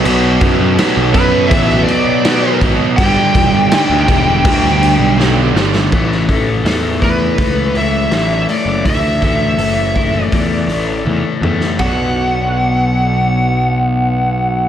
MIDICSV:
0, 0, Header, 1, 6, 480
1, 0, Start_track
1, 0, Tempo, 734394
1, 30, Time_signature, 4, 2, 24, 8
1, 9599, End_track
2, 0, Start_track
2, 0, Title_t, "Lead electric guitar"
2, 0, Program_c, 0, 29
2, 747, Note_on_c, 0, 71, 93
2, 958, Note_on_c, 0, 76, 119
2, 994, Note_off_c, 0, 71, 0
2, 1202, Note_off_c, 0, 76, 0
2, 1205, Note_on_c, 0, 74, 95
2, 1669, Note_off_c, 0, 74, 0
2, 1936, Note_on_c, 0, 79, 113
2, 3352, Note_off_c, 0, 79, 0
2, 4602, Note_on_c, 0, 71, 79
2, 5078, Note_on_c, 0, 76, 91
2, 5086, Note_off_c, 0, 71, 0
2, 5524, Note_off_c, 0, 76, 0
2, 5552, Note_on_c, 0, 74, 77
2, 5785, Note_off_c, 0, 74, 0
2, 5788, Note_on_c, 0, 76, 79
2, 6703, Note_off_c, 0, 76, 0
2, 6703, Note_on_c, 0, 74, 79
2, 7203, Note_off_c, 0, 74, 0
2, 7708, Note_on_c, 0, 78, 67
2, 9599, Note_off_c, 0, 78, 0
2, 9599, End_track
3, 0, Start_track
3, 0, Title_t, "Clean electric guitar"
3, 0, Program_c, 1, 27
3, 4337, Note_on_c, 1, 69, 68
3, 4587, Note_on_c, 1, 64, 64
3, 5310, Note_on_c, 1, 50, 66
3, 5541, Note_off_c, 1, 69, 0
3, 5786, Note_off_c, 1, 64, 0
3, 6263, Note_on_c, 1, 69, 69
3, 6509, Note_off_c, 1, 50, 0
3, 6510, Note_on_c, 1, 64, 60
3, 6747, Note_on_c, 1, 50, 60
3, 7219, Note_off_c, 1, 50, 0
3, 7227, Note_on_c, 1, 50, 57
3, 7466, Note_off_c, 1, 69, 0
3, 7708, Note_off_c, 1, 50, 0
3, 7711, Note_off_c, 1, 64, 0
3, 7719, Note_on_c, 1, 62, 76
3, 7724, Note_on_c, 1, 66, 84
3, 9599, Note_off_c, 1, 62, 0
3, 9599, Note_off_c, 1, 66, 0
3, 9599, End_track
4, 0, Start_track
4, 0, Title_t, "Overdriven electric guitar"
4, 0, Program_c, 2, 29
4, 25, Note_on_c, 2, 54, 94
4, 28, Note_on_c, 2, 47, 101
4, 32, Note_on_c, 2, 59, 106
4, 502, Note_off_c, 2, 47, 0
4, 506, Note_off_c, 2, 54, 0
4, 509, Note_on_c, 2, 47, 83
4, 514, Note_off_c, 2, 59, 0
4, 514, Note_on_c, 2, 54, 92
4, 517, Note_on_c, 2, 59, 99
4, 735, Note_off_c, 2, 47, 0
4, 739, Note_off_c, 2, 54, 0
4, 743, Note_on_c, 2, 47, 85
4, 746, Note_off_c, 2, 59, 0
4, 747, Note_on_c, 2, 54, 104
4, 748, Note_on_c, 2, 59, 115
4, 988, Note_off_c, 2, 59, 0
4, 989, Note_off_c, 2, 47, 0
4, 990, Note_off_c, 2, 54, 0
4, 996, Note_on_c, 2, 59, 113
4, 997, Note_on_c, 2, 47, 94
4, 998, Note_on_c, 2, 54, 105
4, 1469, Note_off_c, 2, 47, 0
4, 1475, Note_off_c, 2, 54, 0
4, 1477, Note_off_c, 2, 59, 0
4, 1477, Note_on_c, 2, 47, 88
4, 1483, Note_on_c, 2, 54, 94
4, 1485, Note_on_c, 2, 59, 91
4, 1706, Note_off_c, 2, 47, 0
4, 1707, Note_off_c, 2, 54, 0
4, 1707, Note_off_c, 2, 59, 0
4, 1713, Note_on_c, 2, 47, 90
4, 1715, Note_on_c, 2, 54, 90
4, 1715, Note_on_c, 2, 59, 99
4, 1935, Note_off_c, 2, 47, 0
4, 1935, Note_off_c, 2, 59, 0
4, 1936, Note_off_c, 2, 54, 0
4, 1959, Note_on_c, 2, 43, 98
4, 1966, Note_on_c, 2, 50, 101
4, 1966, Note_on_c, 2, 55, 108
4, 2422, Note_off_c, 2, 43, 0
4, 2428, Note_off_c, 2, 55, 0
4, 2429, Note_off_c, 2, 50, 0
4, 2430, Note_on_c, 2, 43, 80
4, 2436, Note_on_c, 2, 50, 96
4, 2436, Note_on_c, 2, 55, 103
4, 2659, Note_off_c, 2, 43, 0
4, 2660, Note_off_c, 2, 50, 0
4, 2661, Note_off_c, 2, 55, 0
4, 2666, Note_on_c, 2, 43, 92
4, 2668, Note_on_c, 2, 50, 98
4, 2669, Note_on_c, 2, 55, 96
4, 2899, Note_off_c, 2, 43, 0
4, 2903, Note_off_c, 2, 50, 0
4, 2907, Note_on_c, 2, 43, 100
4, 2909, Note_off_c, 2, 55, 0
4, 2911, Note_on_c, 2, 50, 104
4, 2916, Note_on_c, 2, 55, 99
4, 3377, Note_off_c, 2, 43, 0
4, 3378, Note_off_c, 2, 50, 0
4, 3381, Note_off_c, 2, 55, 0
4, 3385, Note_on_c, 2, 43, 82
4, 3386, Note_on_c, 2, 50, 84
4, 3389, Note_on_c, 2, 55, 92
4, 3620, Note_off_c, 2, 43, 0
4, 3620, Note_off_c, 2, 50, 0
4, 3627, Note_on_c, 2, 50, 89
4, 3628, Note_off_c, 2, 55, 0
4, 3628, Note_on_c, 2, 43, 90
4, 3636, Note_on_c, 2, 55, 91
4, 3850, Note_off_c, 2, 43, 0
4, 3850, Note_off_c, 2, 50, 0
4, 3854, Note_off_c, 2, 55, 0
4, 3865, Note_on_c, 2, 45, 78
4, 3870, Note_on_c, 2, 52, 93
4, 3873, Note_on_c, 2, 57, 81
4, 4106, Note_off_c, 2, 52, 0
4, 4107, Note_off_c, 2, 45, 0
4, 4108, Note_on_c, 2, 52, 73
4, 4110, Note_on_c, 2, 45, 74
4, 4114, Note_off_c, 2, 57, 0
4, 4117, Note_on_c, 2, 57, 85
4, 4343, Note_off_c, 2, 45, 0
4, 4344, Note_off_c, 2, 57, 0
4, 4345, Note_on_c, 2, 45, 68
4, 4347, Note_off_c, 2, 52, 0
4, 4347, Note_on_c, 2, 57, 78
4, 4350, Note_on_c, 2, 52, 73
4, 4586, Note_off_c, 2, 45, 0
4, 4588, Note_off_c, 2, 52, 0
4, 4588, Note_on_c, 2, 45, 83
4, 4591, Note_off_c, 2, 57, 0
4, 4591, Note_on_c, 2, 52, 73
4, 4593, Note_on_c, 2, 57, 79
4, 4817, Note_off_c, 2, 45, 0
4, 4822, Note_off_c, 2, 57, 0
4, 4824, Note_off_c, 2, 52, 0
4, 4824, Note_on_c, 2, 45, 81
4, 4830, Note_on_c, 2, 57, 95
4, 4832, Note_on_c, 2, 52, 89
4, 5055, Note_off_c, 2, 45, 0
4, 5059, Note_off_c, 2, 52, 0
4, 5063, Note_off_c, 2, 57, 0
4, 5063, Note_on_c, 2, 45, 71
4, 5067, Note_on_c, 2, 52, 80
4, 5071, Note_on_c, 2, 57, 83
4, 5289, Note_off_c, 2, 45, 0
4, 5296, Note_off_c, 2, 57, 0
4, 5297, Note_off_c, 2, 52, 0
4, 5297, Note_on_c, 2, 45, 71
4, 5304, Note_on_c, 2, 57, 79
4, 5305, Note_on_c, 2, 52, 83
4, 5543, Note_off_c, 2, 45, 0
4, 5543, Note_off_c, 2, 57, 0
4, 5545, Note_off_c, 2, 52, 0
4, 5551, Note_on_c, 2, 45, 67
4, 5551, Note_on_c, 2, 57, 76
4, 5553, Note_on_c, 2, 52, 78
4, 5783, Note_off_c, 2, 45, 0
4, 5788, Note_off_c, 2, 52, 0
4, 5790, Note_off_c, 2, 57, 0
4, 5790, Note_on_c, 2, 45, 86
4, 5796, Note_on_c, 2, 52, 95
4, 5798, Note_on_c, 2, 57, 89
4, 6020, Note_off_c, 2, 45, 0
4, 6027, Note_off_c, 2, 52, 0
4, 6028, Note_on_c, 2, 45, 73
4, 6030, Note_off_c, 2, 57, 0
4, 6035, Note_on_c, 2, 52, 74
4, 6037, Note_on_c, 2, 57, 81
4, 6266, Note_off_c, 2, 52, 0
4, 6267, Note_off_c, 2, 45, 0
4, 6273, Note_off_c, 2, 57, 0
4, 6274, Note_on_c, 2, 52, 68
4, 6275, Note_on_c, 2, 45, 69
4, 6280, Note_on_c, 2, 57, 75
4, 6501, Note_off_c, 2, 45, 0
4, 6505, Note_off_c, 2, 52, 0
4, 6509, Note_on_c, 2, 45, 67
4, 6511, Note_off_c, 2, 57, 0
4, 6513, Note_on_c, 2, 52, 78
4, 6519, Note_on_c, 2, 57, 82
4, 6734, Note_off_c, 2, 45, 0
4, 6736, Note_off_c, 2, 52, 0
4, 6740, Note_off_c, 2, 57, 0
4, 6742, Note_on_c, 2, 45, 67
4, 6744, Note_on_c, 2, 52, 80
4, 6748, Note_on_c, 2, 57, 86
4, 6978, Note_off_c, 2, 45, 0
4, 6979, Note_off_c, 2, 52, 0
4, 6985, Note_off_c, 2, 57, 0
4, 6986, Note_on_c, 2, 45, 76
4, 6986, Note_on_c, 2, 52, 74
4, 6993, Note_on_c, 2, 57, 79
4, 7220, Note_off_c, 2, 52, 0
4, 7222, Note_off_c, 2, 45, 0
4, 7225, Note_off_c, 2, 57, 0
4, 7228, Note_on_c, 2, 52, 72
4, 7230, Note_on_c, 2, 45, 64
4, 7233, Note_on_c, 2, 57, 71
4, 7459, Note_off_c, 2, 45, 0
4, 7463, Note_off_c, 2, 52, 0
4, 7466, Note_on_c, 2, 45, 66
4, 7467, Note_off_c, 2, 57, 0
4, 7471, Note_on_c, 2, 52, 60
4, 7474, Note_on_c, 2, 57, 73
4, 7693, Note_off_c, 2, 45, 0
4, 7695, Note_off_c, 2, 52, 0
4, 7697, Note_off_c, 2, 57, 0
4, 7710, Note_on_c, 2, 47, 77
4, 7721, Note_on_c, 2, 54, 83
4, 7735, Note_on_c, 2, 59, 79
4, 9599, Note_off_c, 2, 47, 0
4, 9599, Note_off_c, 2, 54, 0
4, 9599, Note_off_c, 2, 59, 0
4, 9599, End_track
5, 0, Start_track
5, 0, Title_t, "Picked electric bass"
5, 0, Program_c, 3, 34
5, 28, Note_on_c, 3, 35, 112
5, 251, Note_off_c, 3, 35, 0
5, 268, Note_on_c, 3, 42, 94
5, 380, Note_off_c, 3, 42, 0
5, 387, Note_on_c, 3, 42, 96
5, 499, Note_off_c, 3, 42, 0
5, 633, Note_on_c, 3, 35, 99
5, 742, Note_off_c, 3, 35, 0
5, 745, Note_on_c, 3, 42, 96
5, 969, Note_off_c, 3, 42, 0
5, 982, Note_on_c, 3, 33, 107
5, 1207, Note_off_c, 3, 33, 0
5, 1707, Note_on_c, 3, 32, 88
5, 1817, Note_off_c, 3, 32, 0
5, 1948, Note_on_c, 3, 31, 117
5, 2058, Note_off_c, 3, 31, 0
5, 2187, Note_on_c, 3, 28, 86
5, 2297, Note_off_c, 3, 28, 0
5, 2303, Note_on_c, 3, 31, 103
5, 2415, Note_off_c, 3, 31, 0
5, 2546, Note_on_c, 3, 38, 95
5, 2656, Note_off_c, 3, 38, 0
5, 2669, Note_on_c, 3, 28, 109
5, 2906, Note_off_c, 3, 28, 0
5, 2906, Note_on_c, 3, 38, 100
5, 3238, Note_off_c, 3, 38, 0
5, 3263, Note_on_c, 3, 35, 97
5, 3596, Note_off_c, 3, 35, 0
5, 3621, Note_on_c, 3, 31, 99
5, 3844, Note_off_c, 3, 31, 0
5, 3867, Note_on_c, 3, 33, 83
5, 4318, Note_off_c, 3, 33, 0
5, 4341, Note_on_c, 3, 40, 79
5, 4796, Note_off_c, 3, 40, 0
5, 4824, Note_on_c, 3, 37, 90
5, 5277, Note_off_c, 3, 37, 0
5, 5294, Note_on_c, 3, 33, 85
5, 5521, Note_off_c, 3, 33, 0
5, 5656, Note_on_c, 3, 30, 73
5, 5786, Note_on_c, 3, 38, 81
5, 5796, Note_off_c, 3, 30, 0
5, 6240, Note_off_c, 3, 38, 0
5, 6256, Note_on_c, 3, 30, 85
5, 6715, Note_off_c, 3, 30, 0
5, 6745, Note_on_c, 3, 40, 73
5, 6968, Note_off_c, 3, 40, 0
5, 6978, Note_on_c, 3, 33, 72
5, 7205, Note_off_c, 3, 33, 0
5, 7221, Note_on_c, 3, 40, 75
5, 7335, Note_off_c, 3, 40, 0
5, 7459, Note_on_c, 3, 40, 76
5, 7575, Note_off_c, 3, 40, 0
5, 7710, Note_on_c, 3, 35, 74
5, 9599, Note_off_c, 3, 35, 0
5, 9599, End_track
6, 0, Start_track
6, 0, Title_t, "Drums"
6, 34, Note_on_c, 9, 49, 80
6, 99, Note_off_c, 9, 49, 0
6, 267, Note_on_c, 9, 49, 68
6, 270, Note_on_c, 9, 36, 99
6, 333, Note_off_c, 9, 49, 0
6, 335, Note_off_c, 9, 36, 0
6, 513, Note_on_c, 9, 49, 87
6, 516, Note_on_c, 9, 38, 114
6, 578, Note_off_c, 9, 49, 0
6, 581, Note_off_c, 9, 38, 0
6, 748, Note_on_c, 9, 36, 93
6, 748, Note_on_c, 9, 49, 67
6, 813, Note_off_c, 9, 36, 0
6, 813, Note_off_c, 9, 49, 0
6, 986, Note_on_c, 9, 49, 88
6, 988, Note_on_c, 9, 36, 123
6, 1051, Note_off_c, 9, 49, 0
6, 1053, Note_off_c, 9, 36, 0
6, 1111, Note_on_c, 9, 38, 34
6, 1177, Note_off_c, 9, 38, 0
6, 1231, Note_on_c, 9, 49, 67
6, 1296, Note_off_c, 9, 49, 0
6, 1468, Note_on_c, 9, 49, 87
6, 1471, Note_on_c, 9, 38, 112
6, 1533, Note_off_c, 9, 49, 0
6, 1537, Note_off_c, 9, 38, 0
6, 1709, Note_on_c, 9, 36, 91
6, 1711, Note_on_c, 9, 49, 64
6, 1774, Note_off_c, 9, 36, 0
6, 1776, Note_off_c, 9, 49, 0
6, 1948, Note_on_c, 9, 36, 111
6, 1950, Note_on_c, 9, 49, 88
6, 2014, Note_off_c, 9, 36, 0
6, 2016, Note_off_c, 9, 49, 0
6, 2189, Note_on_c, 9, 36, 94
6, 2190, Note_on_c, 9, 49, 73
6, 2254, Note_off_c, 9, 36, 0
6, 2255, Note_off_c, 9, 49, 0
6, 2428, Note_on_c, 9, 49, 91
6, 2431, Note_on_c, 9, 38, 121
6, 2493, Note_off_c, 9, 49, 0
6, 2496, Note_off_c, 9, 38, 0
6, 2669, Note_on_c, 9, 36, 88
6, 2670, Note_on_c, 9, 49, 71
6, 2734, Note_off_c, 9, 36, 0
6, 2735, Note_off_c, 9, 49, 0
6, 2908, Note_on_c, 9, 36, 121
6, 2909, Note_on_c, 9, 49, 99
6, 2974, Note_off_c, 9, 36, 0
6, 2974, Note_off_c, 9, 49, 0
6, 3039, Note_on_c, 9, 38, 33
6, 3104, Note_off_c, 9, 38, 0
6, 3154, Note_on_c, 9, 49, 71
6, 3220, Note_off_c, 9, 49, 0
6, 3398, Note_on_c, 9, 38, 70
6, 3463, Note_off_c, 9, 38, 0
6, 3637, Note_on_c, 9, 38, 91
6, 3702, Note_off_c, 9, 38, 0
6, 3758, Note_on_c, 9, 38, 91
6, 3823, Note_off_c, 9, 38, 0
6, 3871, Note_on_c, 9, 57, 77
6, 3872, Note_on_c, 9, 36, 99
6, 3936, Note_off_c, 9, 57, 0
6, 3937, Note_off_c, 9, 36, 0
6, 4001, Note_on_c, 9, 38, 28
6, 4066, Note_off_c, 9, 38, 0
6, 4110, Note_on_c, 9, 36, 77
6, 4111, Note_on_c, 9, 46, 44
6, 4175, Note_off_c, 9, 36, 0
6, 4177, Note_off_c, 9, 46, 0
6, 4352, Note_on_c, 9, 46, 60
6, 4355, Note_on_c, 9, 38, 100
6, 4417, Note_off_c, 9, 46, 0
6, 4420, Note_off_c, 9, 38, 0
6, 4588, Note_on_c, 9, 36, 76
6, 4588, Note_on_c, 9, 46, 42
6, 4653, Note_off_c, 9, 36, 0
6, 4654, Note_off_c, 9, 46, 0
6, 4823, Note_on_c, 9, 46, 64
6, 4826, Note_on_c, 9, 36, 95
6, 4889, Note_off_c, 9, 46, 0
6, 4891, Note_off_c, 9, 36, 0
6, 5066, Note_on_c, 9, 46, 43
6, 5132, Note_off_c, 9, 46, 0
6, 5304, Note_on_c, 9, 46, 59
6, 5307, Note_on_c, 9, 38, 94
6, 5369, Note_off_c, 9, 46, 0
6, 5372, Note_off_c, 9, 38, 0
6, 5548, Note_on_c, 9, 46, 44
6, 5613, Note_off_c, 9, 46, 0
6, 5788, Note_on_c, 9, 36, 93
6, 5789, Note_on_c, 9, 46, 59
6, 5853, Note_off_c, 9, 36, 0
6, 5854, Note_off_c, 9, 46, 0
6, 6027, Note_on_c, 9, 36, 75
6, 6028, Note_on_c, 9, 46, 50
6, 6092, Note_off_c, 9, 36, 0
6, 6093, Note_off_c, 9, 46, 0
6, 6265, Note_on_c, 9, 46, 61
6, 6330, Note_off_c, 9, 46, 0
6, 6505, Note_on_c, 9, 46, 44
6, 6507, Note_on_c, 9, 36, 73
6, 6570, Note_off_c, 9, 46, 0
6, 6573, Note_off_c, 9, 36, 0
6, 6746, Note_on_c, 9, 46, 58
6, 6748, Note_on_c, 9, 36, 93
6, 6812, Note_off_c, 9, 46, 0
6, 6813, Note_off_c, 9, 36, 0
6, 6990, Note_on_c, 9, 46, 44
6, 7055, Note_off_c, 9, 46, 0
6, 7231, Note_on_c, 9, 48, 43
6, 7297, Note_off_c, 9, 48, 0
6, 7473, Note_on_c, 9, 45, 64
6, 7538, Note_off_c, 9, 45, 0
6, 7587, Note_on_c, 9, 38, 57
6, 7653, Note_off_c, 9, 38, 0
6, 7706, Note_on_c, 9, 51, 70
6, 7708, Note_on_c, 9, 36, 57
6, 7772, Note_off_c, 9, 51, 0
6, 7774, Note_off_c, 9, 36, 0
6, 9599, End_track
0, 0, End_of_file